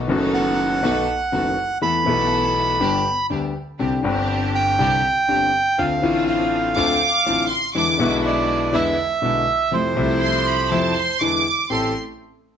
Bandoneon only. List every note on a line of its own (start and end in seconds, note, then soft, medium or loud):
0.34 1.78 F#5 loud
1.82 3.27 B5 loud
4.55 5.82 G5 loud
5.79 6.24 F5 loud
6.28 7.47 F5 medium
8.26 8.76 D5 medium
8.75 9.76 E5 loud
9.74 11.18 C5 medium
11.72 11.94 A4 medium